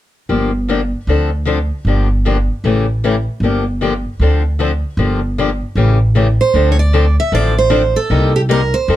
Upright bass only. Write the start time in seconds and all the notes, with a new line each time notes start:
0.29 G1
1.07 D2
1.85 G1
2.64 A1
3.40 G1
4.19 D2
4.97 G1
5.75 A1
6.54 D2
7.32 A1
8.10 C2
8.88 F2